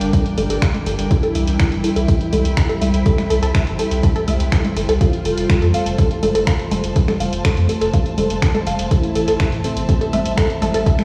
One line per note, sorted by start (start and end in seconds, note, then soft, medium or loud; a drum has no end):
0.00 0.10 G1 medium
0.00 4.97 G3 medium
0.00 2.31 D4 medium
0.00 4.97 E4 medium
0.00 1.07 A#4 medium
0.00 2.67 A#4 medium
0.00 6.01 G5 medium
0.00 snare medium
0.00 closed hi-hat medium
0.13 0.24 A4 medium
0.13 kick loud
0.13 closed hi-hat medium
0.26 closed hi-hat soft
0.38 0.47 G1 loud
0.38 0.42 A4 medium
0.38 closed hi-hat medium
0.38 open hi-hat loud
0.38 low conga medium
0.50 0.59 G1 medium
0.50 0.54 A4 loud
0.50 snare soft
0.50 closed hi-hat medium
0.62 0.69 F5 medium
0.62 finger snap loud
0.62 kick loud
0.62 snare loud
0.62 closed hi-hat medium
0.74 closed hi-hat soft
0.74 low conga medium
0.86 0.96 G1 loud
0.86 0.97 A4 medium
0.86 snare soft
0.86 closed hi-hat medium
0.86 open hi-hat loud
0.99 1.08 G1 medium
0.99 snare medium
0.99 closed hi-hat medium
1.11 1.74 E4 loud
1.11 5.01 E4 medium
1.11 1.15 A4 medium
1.11 11.04 C5 medium
1.11 kick loud
1.11 closed hi-hat medium
1.23 1.27 A4 loud
1.23 closed hi-hat soft
1.35 1.45 C2 medium
1.35 1.42 E5 medium
1.35 closed hi-hat medium
1.35 open hi-hat loud
1.47 1.57 C2 medium
1.47 11.04 C5 medium
1.47 snare soft
1.47 closed hi-hat medium
1.60 1.70 A4 medium
1.60 finger snap loud
1.60 kick loud
1.60 snare loud
1.60 closed hi-hat medium
1.72 1.81 G1 medium
1.72 snare soft
1.72 closed hi-hat soft
1.84 2.47 E4 loud
1.84 1.88 A4 medium
1.84 closed hi-hat medium
1.84 open hi-hat loud
1.96 2.05 C2 medium
1.96 2.00 A4 loud
1.96 closed hi-hat medium
1.96 closed hi-hat soft
2.08 2.16 E5 medium
2.08 kick loud
2.08 closed hi-hat medium
2.21 closed hi-hat soft
2.33 2.42 C2 loud
2.33 2.43 A4 medium
2.33 closed hi-hat medium
2.33 open hi-hat loud
2.33 low conga medium
2.45 2.54 C2 medium
2.45 closed hi-hat medium
2.57 2.61 A4 medium
2.57 finger snap loud
2.57 kick loud
2.57 snare loud
2.57 closed hi-hat medium
2.69 2.74 A4 loud
2.69 closed hi-hat soft
2.81 2.91 C2 loud
2.81 2.89 E5 medium
2.81 closed hi-hat medium
2.81 open hi-hat loud
2.81 low conga medium
2.94 3.03 C2 medium
2.94 closed hi-hat medium
3.06 3.17 A4 medium
3.06 kick loud
3.06 closed hi-hat medium
3.18 finger snap soft
3.18 snare soft
3.18 closed hi-hat soft
3.18 low conga medium
3.30 3.40 C2 medium
3.30 3.35 A4 medium
3.30 closed hi-hat medium
3.30 open hi-hat loud
3.42 3.52 C2 medium
3.42 3.47 A4 loud
3.42 closed hi-hat medium
3.55 3.62 E5 medium
3.55 finger snap loud
3.55 kick loud
3.55 snare loud
3.55 closed hi-hat medium
3.55 closed hi-hat soft
3.67 3.76 G1 medium
3.67 snare medium
3.67 closed hi-hat soft
3.79 3.90 A4 medium
3.79 closed hi-hat medium
3.79 open hi-hat loud
3.91 4.01 C2 medium
3.91 snare medium
3.91 closed hi-hat medium
4.03 4.08 A4 medium
4.03 kick loud
4.03 closed hi-hat medium
4.16 4.20 A4 loud
4.16 closed hi-hat soft
4.28 4.37 C2 medium
4.28 4.35 E5 medium
4.28 closed hi-hat medium
4.28 open hi-hat loud
4.28 low conga medium
4.40 4.49 C2 medium
4.40 snare soft
4.40 closed hi-hat medium
4.52 4.63 A4 medium
4.52 finger snap loud
4.52 kick loud
4.52 snare loud
4.52 closed hi-hat medium
4.65 closed hi-hat soft
4.65 low conga medium
4.76 4.86 G1 medium
4.76 4.81 A4 medium
4.76 snare soft
4.76 closed hi-hat medium
4.76 open hi-hat loud
4.89 4.98 C2 medium
4.89 4.93 A4 loud
4.89 snare medium
4.89 closed hi-hat medium
5.01 8.91 F3 medium
5.01 11.04 A3 medium
5.01 6.94 F4 medium
5.01 5.64 F4 loud
5.01 5.08 F5 medium
5.01 kick loud
5.01 closed hi-hat medium
5.13 closed hi-hat soft
5.25 5.35 F1 medium
5.25 5.36 A4 medium
5.25 closed hi-hat medium
5.25 open hi-hat loud
5.37 5.47 F1 medium
5.37 snare soft
5.37 closed hi-hat medium
5.50 5.54 A4 medium
5.50 finger snap loud
5.50 kick loud
5.50 snare loud
5.50 closed hi-hat medium
5.62 5.71 F2 medium
5.62 5.66 A4 loud
5.62 snare soft
5.62 closed hi-hat soft
5.74 6.38 A4 loud
5.74 5.81 F5 medium
5.74 closed hi-hat medium
5.74 open hi-hat loud
5.86 5.96 F1 medium
5.86 closed hi-hat medium
5.86 closed hi-hat soft
5.98 6.09 A4 medium
5.98 kick loud
5.98 closed hi-hat medium
6.11 closed hi-hat soft
6.23 6.32 F1 medium
6.23 6.27 A4 medium
6.23 closed hi-hat medium
6.23 open hi-hat loud
6.23 low conga medium
6.30 11.04 A5 medium
6.35 6.44 F1 medium
6.35 6.39 A4 loud
6.35 closed hi-hat medium
6.47 6.54 F5 medium
6.47 finger snap loud
6.47 kick loud
6.47 snare loud
6.47 closed hi-hat medium
6.59 closed hi-hat soft
6.71 6.81 F1 medium
6.71 6.82 A4 medium
6.71 closed hi-hat medium
6.71 open hi-hat loud
6.71 low conga medium
6.84 6.93 F1 medium
6.84 closed hi-hat medium
6.96 11.04 E4 medium
6.96 7.00 A4 medium
6.96 kick loud
6.96 closed hi-hat medium
7.08 7.13 A4 loud
7.08 finger snap soft
7.08 snare soft
7.08 closed hi-hat soft
7.08 low conga medium
7.20 7.30 F1 medium
7.20 7.28 F5 medium
7.20 closed hi-hat medium
7.20 open hi-hat loud
7.33 7.42 F1 medium
7.33 closed hi-hat medium
7.45 7.56 A4 medium
7.45 finger snap loud
7.45 kick loud
7.45 snare loud
7.45 closed hi-hat medium
7.57 7.66 F2 medium
7.57 snare soft
7.57 closed hi-hat soft
7.69 7.74 A4 medium
7.69 closed hi-hat medium
7.69 open hi-hat loud
7.81 7.91 F1 medium
7.81 7.86 A4 loud
7.81 snare medium
7.81 closed hi-hat medium
7.93 8.01 F5 medium
7.93 kick loud
7.93 closed hi-hat medium
8.06 closed hi-hat soft
8.18 8.27 F1 medium
8.18 8.29 A4 medium
8.18 closed hi-hat medium
8.18 open hi-hat loud
8.18 low conga medium
8.30 8.39 F1 medium
8.30 snare soft
8.30 closed hi-hat medium
8.42 8.47 A4 medium
8.42 finger snap loud
8.42 kick loud
8.42 snare loud
8.42 closed hi-hat medium
8.55 8.59 A4 loud
8.55 closed hi-hat soft
8.55 low conga medium
8.67 8.76 F1 medium
8.67 8.74 F5 medium
8.67 snare soft
8.67 closed hi-hat medium
8.67 open hi-hat loud
8.79 8.88 F1 medium
8.79 snare medium
8.79 closed hi-hat medium
8.91 9.55 E4 loud
8.91 9.02 A4 medium
8.91 11.04 E5 medium
8.91 kick loud
8.91 closed hi-hat medium
9.03 closed hi-hat soft
9.15 9.25 A1 medium
9.15 9.20 A4 medium
9.15 closed hi-hat medium
9.15 open hi-hat loud
9.28 9.37 A1 medium
9.28 9.32 A4 loud
9.28 snare soft
9.28 closed hi-hat medium
9.40 9.47 E5 medium
9.40 finger snap loud
9.40 kick loud
9.40 snare loud
9.40 closed hi-hat medium
9.52 9.61 A2 medium
9.52 snare soft
9.52 closed hi-hat soft
9.64 10.28 C4 loud
9.64 9.75 A4 medium
9.64 closed hi-hat medium
9.64 open hi-hat loud
9.77 9.86 A1 medium
9.77 closed hi-hat soft
9.77 closed hi-hat medium
9.89 9.93 A4 medium
9.89 kick loud
9.89 closed hi-hat medium
10.01 10.05 A4 loud
10.01 closed hi-hat soft
10.13 10.22 A1 medium
10.13 10.20 E5 medium
10.13 closed hi-hat medium
10.13 open hi-hat loud
10.13 low conga loud
10.26 10.35 A1 medium
10.26 closed hi-hat medium
10.37 10.48 A4 medium
10.37 finger snap loud
10.37 kick loud
10.37 snare loud
10.37 closed hi-hat medium
10.50 closed hi-hat soft
10.62 10.71 A1 loud
10.62 10.66 A4 medium
10.62 closed hi-hat medium
10.62 open hi-hat loud
10.62 low conga loud
10.74 10.83 A1 medium
10.74 10.79 A4 loud
10.74 closed hi-hat medium
10.86 10.94 E5 medium
10.86 kick loud
10.86 closed hi-hat medium
10.99 finger snap soft
10.99 snare soft
10.99 closed hi-hat soft
10.99 low conga medium